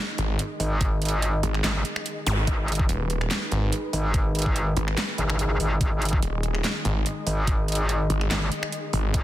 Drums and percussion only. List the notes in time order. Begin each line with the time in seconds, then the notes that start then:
0.18 closed hi-hat
0.39 closed hi-hat
0.60 open hi-hat
0.81 kick, closed hi-hat
1.02 closed hi-hat
1.05 closed hi-hat
1.09 closed hi-hat
1.22 closed hi-hat
1.43 closed hi-hat
1.54 finger snap
1.64 finger snap, snare, clap, closed hi-hat
1.85 closed hi-hat
1.96 finger snap
2.06 closed hi-hat
2.27 open hi-hat
2.47 kick, closed hi-hat
2.68 closed hi-hat
2.72 closed hi-hat
2.75 closed hi-hat
2.79 kick
2.89 closed hi-hat
3.10 closed hi-hat
3.21 finger snap
3.31 snare, clap, closed hi-hat
3.52 closed hi-hat
3.72 closed hi-hat
3.93 open hi-hat
4.14 kick, closed hi-hat
4.35 closed hi-hat
4.39 closed hi-hat
4.42 closed hi-hat
4.46 kick
4.56 closed hi-hat
4.77 closed hi-hat
4.88 finger snap
4.97 finger snap, snare, clap, closed hi-hat
5.18 closed hi-hat
5.30 finger snap
5.39 closed hi-hat
5.60 open hi-hat
5.81 kick, closed hi-hat
6.02 closed hi-hat
6.05 closed hi-hat
6.09 closed hi-hat
6.13 kick
6.22 closed hi-hat
6.43 closed hi-hat
6.55 finger snap
6.64 snare, clap, closed hi-hat
6.85 closed hi-hat
7.06 closed hi-hat
7.27 open hi-hat
7.47 kick, closed hi-hat
7.68 closed hi-hat
7.72 closed hi-hat
7.75 closed hi-hat
7.89 closed hi-hat
8.10 closed hi-hat
8.21 finger snap
8.31 finger snap, snare, clap, closed hi-hat
8.52 closed hi-hat
8.63 finger snap
8.72 closed hi-hat
8.93 open hi-hat
9.14 kick, closed hi-hat